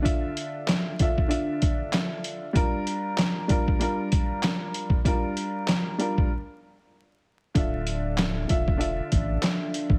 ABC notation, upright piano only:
X:1
M:4/4
L:1/8
Q:"Swing 16ths" 1/4=96
K:Dm
V:1 name="Upright piano"
[D,DFe]3 [D,DFe] [D,DFe]4 | [G,DFB]3 [G,DFB] [G,DFB]4 | [G,DFB]3 [G,DFB] z4 | [D,DFe]3 [D,DFe] [D,DFe]4 |]